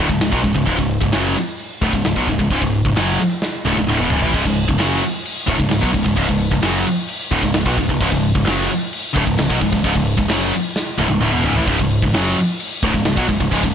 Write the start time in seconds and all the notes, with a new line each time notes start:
0.09 C#1 C#2 G#2, kick
0.21 C#1 C#2 G#2, snare, open hi-hat
0.31 B1 B2 F#3, kick
0.44 C#1 C#2 G#2, kick, open hi-hat
0.55 C#1 C#2 G#2, kick
0.66 C#1 C#2 G#2, kick, open hi-hat
0.78 C#1 C#2 G#2, kick
0.90 open hi-hat
1.01 C#1 C#2 G#2, kick
1.12 F#1 F#2 C#3 F#3, snare, open hi-hat
1.36 snare, open hi-hat
1.58 open hi-hat
1.82 D1 D2 A2, kick, open hi-hat
1.93 C#1 C#2 G#2, kick
2.05 C#1 C#2 G#2, snare, open hi-hat
2.16 B1 B2 F#3, kick
2.27 C#1 C#2 G#2, kick, open hi-hat
2.39 C#1 C#2 G#2, kick
2.50 C#1 C#2 G#2, kick, open hi-hat
2.62 C#1 C#2 G#2, kick
2.73 open hi-hat
2.85 C#1 C#2 G#2, kick
2.95 F#1 F#2 C#3 F#3, snare, open hi-hat
3.19 snare, open hi-hat
3.42 snare
3.65 D1 D2 A2, high tom
3.76 C#1 C#2 G#2, high tom
3.87 D1 D2 A2, mid tom
3.99 E1 E2 B2
4.10 C#1 C#2 G#2, floor tom
4.21 A1 A2 E3, floor tom
4.34 C#1 C#2 G#2, kick, crash
4.45 C#1 C#2 G#2, kick
4.57 crash
4.68 C#1 C#2 G#2, kick
4.78 F#1 F#2 C#3 F#3, snare, crash
5.03 crash
5.26 crash
5.47 D1 D2 A2, kick, crash
5.58 C#1 C#2 G#2, kick
5.69 C#1 C#2 G#2, snare, crash
5.81 B1 B2 F#3, kick
5.93 C#1 C#2 G#2, kick, crash
6.04 C#1 C#2 G#2, kick
6.16 C#1 C#2 G#2, kick, crash
6.28 C#1 C#2 G#2, kick
6.40 crash
6.51 C#1 C#2 G#2, kick
6.62 F#1 F#2 C#3 F#3, snare, crash
6.85 crash
7.09 crash
7.31 D1 D2 A2, kick, crash
7.43 C#1 C#2 G#2, kick, snare
7.53 C#1 C#2 G#2, snare, crash
7.65 B1 B2 F#3, kick
7.77 C#1 C#2 G#2, kick, crash
7.89 C#1 C#2 G#2, kick
8.01 C#1 C#2 G#2, kick, crash
8.11 C#1 C#2 G#2, kick
8.25 crash
8.35 C#1 C#2 G#2, kick
8.45 F#1 F#2 C#3 F#3, snare, crash
8.70 crash
8.93 crash
9.13 D1 D2 A2, kick, crash
9.25 C#1 C#2 G#2, kick
9.38 C#1 C#2 G#2, snare, crash
9.49 B1 B2 F#3, kick
9.60 C#1 C#2 G#2, kick, crash
9.72 C#1 C#2 G#2, kick
9.84 C#1 C#2 G#2, kick, crash
9.95 C#1 C#2 G#2, kick
10.07 crash
10.18 C#1 C#2 G#2, kick
10.28 F#1 F#2 C#3 F#3, snare, crash
10.53 crash
10.76 snare
10.98 D1 D2 A2, high tom
11.09 C#1 C#2 G#2, high tom
11.21 D1 D2 A2, mid tom
11.32 E1 E2 B2
11.44 C#1 C#2 G#2, floor tom
11.56 A1 A2 E3, floor tom
11.67 C#1 C#2 G#2, kick, crash
11.79 C#1 C#2 G#2, kick
11.90 crash
12.02 C#1 C#2 G#2, kick
12.13 F#1 F#2 C#3 F#3, snare, crash
12.37 crash
12.60 crash
12.83 D1 D2 A2, kick
12.94 C#1 C#2 G#2, kick
13.04 C#1 C#2 G#2, snare, crash
13.17 B1 B2 F#3, kick
13.29 C#1 C#2 G#2, kick, crash
13.40 C#1 C#2 G#2, kick
13.51 C#1 C#2 G#2, kick, crash
13.63 C#1 C#2 G#2, kick